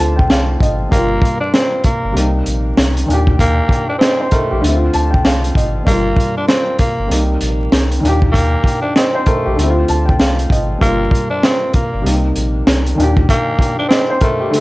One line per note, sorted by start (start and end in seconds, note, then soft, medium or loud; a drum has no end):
0.00 0.26 D2 medium
0.00 0.88 D3 medium
0.00 0.90 A3 medium
0.00 0.91 C4 medium
0.00 0.95 F4 medium
0.00 0.94 G4 medium
0.00 0.17 A5 medium
0.16 0.28 G5 medium
0.16 kick medium
0.30 0.57 C2 medium
0.30 0.59 F5 medium
0.30 snare loud
0.30 closed hi-hat medium
0.60 0.87 G#1 medium
0.60 0.90 D#5 medium
0.60 kick loud
0.60 closed hi-hat medium
0.89 1.19 G1 loud
0.89 2.11 G2 medium
0.89 2.12 G3 medium
0.89 1.39 A#3 loud
0.89 kick loud
0.89 closed hi-hat medium
0.94 2.13 A#3 medium
0.94 2.15 F4 medium
1.22 kick loud
1.22 closed hi-hat medium
1.40 1.52 D4 medium
1.54 1.82 C4 medium
1.54 snare loud
1.54 closed hi-hat medium
1.84 2.32 A#3 medium
1.84 kick medium
1.84 closed hi-hat medium
2.04 2.14 G1 medium
2.12 2.42 C2 loud
2.12 3.07 C3 medium
2.12 3.07 G3 medium
2.12 3.08 A#3 medium
2.12 3.09 D#4 medium
2.17 closed hi-hat medium
2.46 2.73 A#1 medium
2.46 closed hi-hat medium
2.77 3.04 C2 medium
2.77 snare loud
2.77 closed hi-hat medium
2.97 closed hi-hat medium
3.06 3.62 D#2 loud
3.06 4.60 A#2 medium
3.06 4.59 D#3 medium
3.10 4.61 D4 medium
3.10 4.02 G4 medium
3.10 closed hi-hat medium
3.27 kick medium
3.39 3.87 A#3 loud
3.39 kick loud
3.39 closed hi-hat medium
3.69 kick loud
3.69 closed hi-hat medium
3.89 3.98 D4 medium
3.99 4.28 C4 medium
3.99 4.19 D#5 medium
3.99 snare loud
3.99 closed hi-hat medium
4.20 4.32 C5 medium
4.31 4.79 A3 medium
4.31 4.50 A#4 medium
4.31 kick medium
4.31 closed hi-hat medium
4.51 4.62 A#1 medium
4.51 4.80 G4 medium
4.61 4.90 D2 loud
4.61 5.83 D3 medium
4.61 5.84 A3 medium
4.61 closed hi-hat medium
4.66 5.86 C4 medium
4.66 4.74 E4 medium
4.75 5.89 F4 medium
4.93 5.21 D2 medium
4.93 5.12 A5 medium
4.93 closed hi-hat medium
5.11 5.23 G5 medium
5.11 kick medium
5.25 5.52 C2 medium
5.25 5.54 F5 medium
5.25 snare loud
5.25 closed hi-hat medium
5.44 closed hi-hat medium
5.55 5.82 G#1 medium
5.55 5.85 D#5 medium
5.55 kick loud
5.55 closed hi-hat medium
5.83 6.13 G1 loud
5.83 7.06 G2 medium
5.83 7.07 G3 medium
5.83 6.34 A#3 loud
5.83 kick loud
5.88 7.08 A#3 medium
5.88 7.10 F4 medium
5.88 closed hi-hat medium
6.16 kick loud
6.16 closed hi-hat medium
6.37 6.47 D4 medium
6.48 6.76 C4 medium
6.48 snare loud
6.48 closed hi-hat medium
6.79 7.26 A#3 medium
6.79 kick medium
6.79 closed hi-hat medium
6.99 7.09 G1 loud
7.07 7.37 C2 loud
7.07 8.01 C3 medium
7.07 8.02 G3 medium
7.07 8.03 A#3 medium
7.07 8.03 D#4 medium
7.11 closed hi-hat medium
7.41 7.68 A#1 medium
7.41 closed hi-hat medium
7.72 7.99 C2 medium
7.72 snare loud
7.72 closed hi-hat medium
7.92 closed hi-hat medium
8.00 8.57 D#2 loud
8.00 9.54 A#2 medium
8.00 9.53 D#3 medium
8.05 9.56 D4 medium
8.05 8.96 G4 medium
8.05 closed hi-hat medium
8.22 kick medium
8.32 8.80 A#3 loud
8.32 kick loud
8.32 closed hi-hat medium
8.64 kick loud
8.64 closed hi-hat medium
8.82 8.93 D4 medium
8.96 9.24 C4 medium
8.96 9.14 D#5 medium
8.96 snare loud
8.96 closed hi-hat medium
9.15 9.26 C5 medium
9.26 9.74 A3 medium
9.26 9.45 A#4 medium
9.26 kick medium
9.26 closed hi-hat medium
9.46 9.56 A#1 medium
9.46 9.75 G4 medium
9.56 9.85 D2 loud
9.56 10.78 D3 medium
9.56 10.79 A3 medium
9.56 closed hi-hat medium
9.61 10.80 C4 medium
9.61 9.69 E4 medium
9.70 10.84 F4 medium
9.88 10.16 D2 medium
9.88 10.07 A5 medium
9.88 closed hi-hat medium
10.06 10.18 G5 medium
10.06 kick medium
10.20 10.47 C2 medium
10.20 10.49 F5 medium
10.20 snare loud
10.20 closed hi-hat medium
10.39 closed hi-hat medium
10.50 10.77 G#1 medium
10.50 10.80 D#5 medium
10.50 kick loud
10.50 closed hi-hat medium
10.78 11.08 G1 loud
10.78 12.01 G2 medium
10.78 12.02 G3 medium
10.78 11.29 A#3 loud
10.78 kick loud
10.82 12.03 A#3 medium
10.82 12.05 F4 medium
10.82 closed hi-hat medium
11.11 kick loud
11.11 closed hi-hat medium
11.30 11.41 D4 medium
11.43 11.72 C4 medium
11.43 snare loud
11.43 closed hi-hat medium
11.73 12.22 A#3 medium
11.73 kick medium
11.73 closed hi-hat medium
11.94 12.04 G1 medium
12.02 12.96 C3 medium
12.02 12.97 G3 medium
12.02 12.98 A#3 medium
12.02 12.98 D#4 medium
12.06 12.32 C2 loud
12.06 closed hi-hat medium
12.36 12.63 A#1 medium
12.36 closed hi-hat medium
12.67 12.94 C2 medium
12.67 snare loud
12.67 closed hi-hat medium
12.86 closed hi-hat medium
12.95 13.25 D#2 loud
12.95 14.49 A#2 medium
12.95 14.48 D#3 medium
13.00 14.51 D4 medium
13.00 13.91 G4 medium
13.00 closed hi-hat medium
13.17 kick loud
13.29 13.76 A#3 loud
13.29 kick loud
13.29 closed hi-hat medium
13.59 kick loud
13.59 closed hi-hat medium
13.79 13.88 D4 medium
13.88 14.17 C4 loud
13.88 14.09 D#5 medium
13.88 snare loud
13.88 closed hi-hat medium
14.10 14.21 C5 medium
14.21 14.60 A3 medium
14.21 14.40 A#4 medium
14.21 kick medium
14.21 closed hi-hat medium
14.40 14.60 G4 medium
14.50 14.60 D3 medium
14.50 14.60 A3 medium
14.50 closed hi-hat medium
14.55 14.60 C4 medium